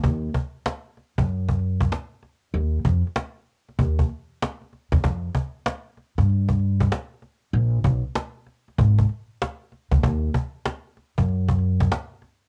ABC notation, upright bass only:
X:1
M:4/4
L:1/16
Q:"Swing 16ths" 1/4=96
K:Ebmix
V:1 name="Upright bass" clef=bass
E,,2 z4 z _G,,4- G,, z4 | E,,2 F,, z4 z E,,2 z4 z =E,, | F,,2 z4 z G,,4- G,, z4 | B,,,2 _C,, z4 z A,,,2 z4 z =D,, |
E,,2 z4 z _G,,4- G,, z4 |]